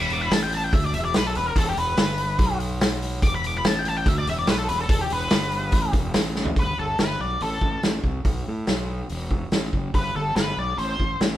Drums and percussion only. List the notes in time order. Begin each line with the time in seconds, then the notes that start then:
0.10 open hi-hat
0.31 snare, open hi-hat
0.52 open hi-hat
0.73 kick, open hi-hat
0.94 open hi-hat
1.14 snare, open hi-hat
1.35 open hi-hat
1.56 kick, open hi-hat
1.77 open hi-hat
1.97 snare, open hi-hat
2.18 open hi-hat
2.39 kick, open hi-hat
2.60 open hi-hat
2.81 snare, open hi-hat
3.02 open hi-hat
3.22 kick, open hi-hat
3.44 open hi-hat
3.65 snare, open hi-hat
3.85 open hi-hat
4.06 kick, open hi-hat
4.27 open hi-hat
4.47 snare, open hi-hat
4.69 open hi-hat
4.89 kick, open hi-hat
5.10 open hi-hat
5.30 snare, open hi-hat
5.52 open hi-hat
5.72 kick, open hi-hat
5.93 kick, open hi-hat
6.14 snare, open hi-hat
6.36 snare
6.45 floor tom
6.56 kick, open hi-hat
6.99 snare, open hi-hat
7.41 open hi-hat
7.61 kick
7.83 snare, open hi-hat
8.04 kick
8.25 kick, open hi-hat
8.67 snare, open hi-hat
9.10 open hi-hat
9.31 kick
9.52 snare, open hi-hat
9.73 kick
9.94 kick, open hi-hat
10.36 snare, open hi-hat
10.79 open hi-hat
11.00 kick
11.21 snare, open hi-hat